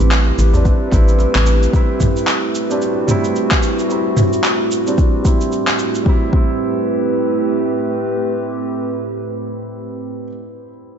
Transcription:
Already playing: A2 G3 A3 C4 D4 E4 G4 B4
0.00 A1, cabasa
0.11 clap, cabasa
0.27 djembe tone
0.38 A1, djembe slap, cabasa
0.53 G3 C4 D4, djembe bass, cabasa
0.65 kick, djembe slap, cabasa
0.90 A1 G3 C4 E4, kick, djembe slap, djembe tone, cabasa
1.08 cabasa
1.19 djembe slap, cabasa
1.34 A1, clap, djembe slap, djembe tone
1.47 cabasa
1.63 cabasa
1.72 G3 C4, kick, cabasa
1.76 E4
2.00 kick, mid tom, cabasa
2.17 cabasa
2.27 clap, cabasa
2.48 F#4
2.55 cabasa
2.69 G3 C4 D4, cabasa
2.82 cabasa
3.07 G3 C4 E4, mid tom, cabasa
3.24 cabasa
3.36 cabasa
3.51 kick, clap
3.63 cabasa
3.79 cabasa
3.88 G3 C4, cabasa
3.92 E4
4.17 mid tom, cabasa
4.33 cabasa
4.44 clap, cabasa
4.71 cabasa
4.86 G3 C4 D4, cabasa
4.98 kick, cabasa
5.23 G3 C4 E4, kick, cabasa
5.41 cabasa
5.52 cabasa
5.67 clap
5.79 cabasa
5.95 cabasa
6.03 A2 G3 C4, kick
6.09 E4
6.16 A3
6.23 C4
6.30 G3 C4 G4, kick
6.36 E4 B4

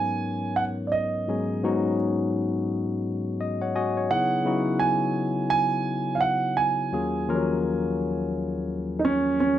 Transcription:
Already playing: G#2 F#3 B3 C#4 D#4 A#4 C#5 G#5
0.56 F#5
0.87 D5
0.92 D#5
1.28 G#2 F#3 B3 C#4 D#4 G#4
1.64 G#2 F#3 B3 C#4 D#4 F#4
3.41 D#5
3.62 C#5 F#5
3.75 F#4 D#5 G#5
3.97 C#5
4.10 C#3 F#3 B3 D#4 E4 G#4 F#5
4.45 C#3 F#3 B3 D#4 E4 F#4
4.79 G#5
5.50 G#5
6.15 F5
6.21 F#5
6.57 G#5
6.92 D#2 F#3 A#3 C#4 F4 G#4
7.28 D#2 F3 A#3 C#4 F4 A#4
7.35 F#3
8.99 D#4
9.05 C#4
9.40 C#4

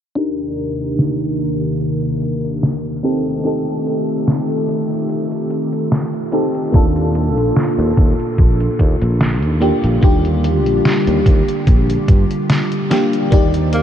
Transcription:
0.15 D#2 C3 D#3 A#3 D4 D#4 G4 A#4, closed hi-hat
0.39 closed hi-hat
0.57 closed hi-hat
0.80 closed hi-hat
0.99 snare, closed hi-hat
1.21 closed hi-hat
1.39 closed hi-hat
1.61 closed hi-hat
1.81 closed hi-hat
2.03 closed hi-hat
2.22 closed hi-hat
2.44 closed hi-hat
2.63 snare, closed hi-hat
2.85 closed hi-hat
3.03 D#3 A3 C4 D#4 F4 G4 A4, closed hi-hat
3.26 closed hi-hat
3.44 C4 D#4 G4 A4, closed hi-hat
3.68 closed hi-hat
3.87 closed hi-hat
4.09 closed hi-hat
4.28 snare, closed hi-hat
4.50 closed hi-hat
4.69 closed hi-hat
4.91 closed hi-hat
5.09 closed hi-hat
5.32 closed hi-hat
5.50 closed hi-hat
5.73 closed hi-hat
5.92 snare, closed hi-hat
6.13 closed hi-hat
6.32 C4 D#4 G4 A4, closed hi-hat
6.55 closed hi-hat
6.72 D#2 A#2 A#3 D4 F4 A4, kick, closed hi-hat
6.96 closed hi-hat
7.15 closed hi-hat
7.37 A#1, closed hi-hat
7.56 snare, closed hi-hat
7.78 D#2, closed hi-hat
7.97 D#2, kick, closed hi-hat
8.20 closed hi-hat
8.38 A#1, kick, closed hi-hat
8.60 closed hi-hat
8.79 D#2, kick, closed hi-hat
9.02 A#1, closed hi-hat
9.21 snare, closed hi-hat
9.43 D#2, closed hi-hat
9.61 D3 G3 A#3 D4 F4 G4, closed hi-hat
9.84 A#1, closed hi-hat
10.01 D#2 A#3 D4 F4 G4, kick, closed hi-hat
10.25 closed hi-hat
10.44 closed hi-hat
10.66 A#1, closed hi-hat
10.85 snare, closed hi-hat
11.07 D#2, closed hi-hat
11.26 D#2 G4, kick, closed hi-hat
11.49 closed hi-hat
11.67 A#1, kick, closed hi-hat
11.90 closed hi-hat
12.08 G2, kick, closed hi-hat
12.31 closed hi-hat
12.50 snare, closed hi-hat
12.72 closed hi-hat
12.90 A#3 D4 F4 G4, snare, closed hi-hat
13.13 closed hi-hat
13.30 D#2 D#3 A#3 D#4 G4 C5 D5 A#5, kick, closed hi-hat
13.54 closed hi-hat
13.73 A#3, closed hi-hat

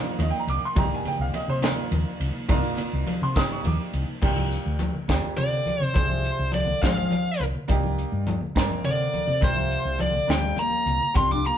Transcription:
Already playing: D#3 F3 A#3 D4 D#4 F4
0.19 D#2 D#5, ride, high conga, low conga
0.30 G5
0.39 A#5
0.47 C2 D6, ride
0.65 C6
0.75 C2 A#3 D4 D#4 G4 A#5, kick, ride, muted conga, high conga
0.92 G#5, low conga
1.05 G5, muted fretless electric bass stroke, ride, low conga
1.19 C2 F5
1.34 D#5, ride, high conga
1.48 C3 C5
1.62 A#3 D4 D#4 F4, snare, ride, muted conga
1.91 D#2, ride, high conga, low conga
2.20 C2, ride
2.49 C2 A#3 D4 D#4 F4, kick, ride, muted conga, high conga
2.77 muted fretless electric bass stroke, ride, low conga
2.93 C2
3.07 ride, high conga
3.22 C3 C6
3.35 A#3 D4 D#4 G4 D#6, kick, snare, ride, muted conga, low conga
3.52 C#6
3.64 D#2 D6, ride, high conga, low conga
3.93 C2, ride
4.22 C2 A#3 D4 F4 G4, kick, crash, muted conga
4.36 high conga
4.51 closed hi-hat
4.66 D2
4.79 closed hi-hat, muted conga, high conga
4.94 low conga
5.08 D2 A#3 D4 F4 G4, kick, snare, closed hi-hat
5.23 high conga
5.37 C3 D3 D5, closed hi-hat, muted conga, low conga
5.66 muted fretless electric bass stroke, closed hi-hat, high conga
5.80 C3 C5, low conga
5.94 C2 C4 D4 F4 G#4 C5, kick, closed hi-hat, muted conga
5.99 C3
6.09 high conga
6.24 closed hi-hat
6.39 C2
6.52 D5, closed hi-hat, muted conga, high conga
6.57 D3
6.67 low conga
6.81 G#1 F3 C4 D4 F4 G#4 F5, kick, snare, closed hi-hat
6.96 high conga
7.11 closed hi-hat, muted conga, low conga
7.40 C2, closed hi-hat, high conga
7.54 low conga
7.68 C2 A#3 D4 D#4 G4, kick, closed hi-hat, muted conga
7.83 high conga
7.99 closed hi-hat
8.12 G2
8.27 closed hi-hat, muted conga, high conga
8.41 low conga
8.55 G2 A#3 C4 D4 A#4, kick, snare, closed hi-hat
8.70 muted fretless electric bass stroke, high conga
8.84 C3 D3 D5, closed hi-hat, muted conga, low conga
9.13 muted fretless electric bass stroke, closed hi-hat, high conga
9.28 C3, low conga
9.41 C2 A#3 D4 F4 G4 C5, kick, closed hi-hat, muted conga
9.45 C3
9.55 high conga
9.71 closed hi-hat
9.85 C2, low conga
9.99 D5, closed hi-hat, muted conga, high conga
10.04 D3
10.13 low conga
10.27 D2 A#3 D4 F4 G4 G5, snare, closed hi-hat
10.31 G3
10.42 high conga, low conga
10.56 A#5, closed hi-hat, muted conga, low conga
10.61 A#3
10.70 high conga
10.85 C2, closed hi-hat, low conga
11.01 low conga
11.14 C2 A#3 D4 F4 G4 C6, kick, closed hi-hat, muted conga
11.19 C4
11.29 D6, high conga
11.33 D4
11.45 A#3 A#5, closed hi-hat

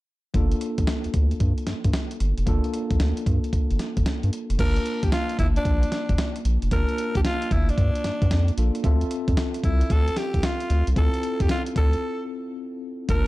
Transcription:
0.34 G1 A#3 D4 F4 A4, kick, closed hi-hat
0.52 closed hi-hat
0.61 closed hi-hat
0.78 A#1, kick, closed hi-hat
0.87 snare, closed hi-hat
1.04 D2, closed hi-hat
1.14 D2, kick, closed hi-hat
1.31 closed hi-hat
1.40 G2, kick, closed hi-hat
1.58 closed hi-hat
1.67 G2, snare, closed hi-hat
1.84 G2, kick, closed hi-hat
1.93 snare, closed hi-hat
2.11 closed hi-hat
2.20 G1, closed hi-hat
2.38 F1, closed hi-hat
2.46 G1 A#3 D4 F4 A4, kick, closed hi-hat
2.64 closed hi-hat
2.74 closed hi-hat
2.91 A#1, kick, closed hi-hat
3.00 D2, snare, closed hi-hat
3.17 closed hi-hat
3.26 G2, kick, closed hi-hat
3.44 closed hi-hat
3.53 kick, closed hi-hat
3.71 G1, closed hi-hat
3.79 snare, closed hi-hat
3.97 G1, kick, closed hi-hat
4.06 snare, closed hi-hat
4.23 G2, closed hi-hat
4.33 closed hi-hat
4.50 F1, closed hi-hat
4.59 G1 A#3 D4 F4 A#4 A5, kick, closed hi-hat, crash
4.76 closed hi-hat
4.86 closed hi-hat
5.03 A#1 G4, kick, closed hi-hat
5.12 F4, snare, closed hi-hat
5.29 closed hi-hat
5.39 G1 E4, kick, closed hi-hat
5.56 D4, closed hi-hat
5.65 A#1, kick, closed hi-hat
5.83 closed hi-hat
5.92 snare, closed hi-hat
6.09 G1, kick, closed hi-hat
6.18 snare, closed hi-hat
6.36 closed hi-hat
6.45 A#1, closed hi-hat
6.62 F1, closed hi-hat
6.71 G1 A#3 D4 F4 A#4 A5, kick, closed hi-hat
6.89 closed hi-hat
6.98 closed hi-hat
7.15 A#1 G4, kick, closed hi-hat
7.25 F4, snare, closed hi-hat
7.42 closed hi-hat
7.51 G1 E4, kick, closed hi-hat
7.69 D4, closed hi-hat
7.78 G2, kick, closed hi-hat
7.95 closed hi-hat
8.04 G2, snare, closed hi-hat
8.22 G2, kick, closed hi-hat
8.31 F2, snare, closed hi-hat
8.48 closed hi-hat
8.57 A#1 A#3 D4 F4 A4, closed hi-hat
8.75 closed hi-hat
8.83 D2 C4 F4 A4 E5, kick, closed hi-hat
9.01 closed hi-hat
9.11 closed hi-hat
9.28 F2, kick, closed hi-hat
9.37 snare, closed hi-hat
9.54 closed hi-hat
9.64 C2 E4, kick, closed hi-hat
9.81 closed hi-hat
9.90 D2 A4, kick, closed hi-hat
10.08 closed hi-hat
10.17 G4, snare, closed hi-hat
10.34 C2, kick, closed hi-hat
10.43 F4, snare, closed hi-hat
10.60 closed hi-hat
10.70 D2, closed hi-hat
10.87 C2, closed hi-hat
10.96 D2 C4 E4 F4 A4, kick, closed hi-hat
11.14 closed hi-hat
11.23 closed hi-hat
11.40 F2 G4, kick, closed hi-hat
11.49 F4, snare, closed hi-hat
11.66 closed hi-hat
11.76 D2 A4, kick, closed hi-hat
11.93 closed hi-hat
13.08 G1 A3 D4 F4 A#4 A5, kick, closed hi-hat
13.15 A#3

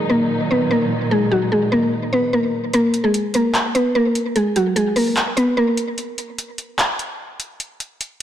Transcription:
Already playing: A#2 D#3 F#3 D#4
0.10 A#3 A#4
0.51 B3 B4
0.71 A#3 A#4
1.11 G#3 G#4
1.32 F#3 F#4
1.52 G#3 G#4
1.72 A#3 A#4
2.13 B3 B4
2.33 A#3 A#4
2.73 A#3 A#4, closed hi-hat
2.94 closed hi-hat
3.04 G#3 G#4
3.14 closed hi-hat
3.34 A#3 A#4, closed hi-hat
3.55 clap, closed hi-hat
3.75 B3 B4, closed hi-hat
3.95 A#3 A#4
4.15 closed hi-hat
4.36 G#3 G#4, closed hi-hat
4.56 F#3 F#4, closed hi-hat
4.76 G#3 G#4, closed hi-hat
4.96 A#3 A#4, open hi-hat
5.17 clap, closed hi-hat
5.37 B3 B4, closed hi-hat
5.57 A#3 A#4
5.77 closed hi-hat
5.98 closed hi-hat
6.18 closed hi-hat
6.38 closed hi-hat
6.58 closed hi-hat
6.79 clap, closed hi-hat
6.99 closed hi-hat
7.40 closed hi-hat
7.60 closed hi-hat
7.80 closed hi-hat
8.01 closed hi-hat

